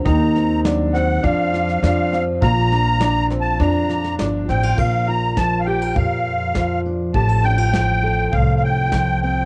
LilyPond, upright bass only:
\new Staff \with { instrumentName = "Upright bass" } { \clef bass \time 4/4 \key bes \major \tempo 4 = 102 ees,2 f,4 f,4 | bes,,2 f,4 g,,8 a,,8 | bes,,2 f,2 | a,,2 c,2 | }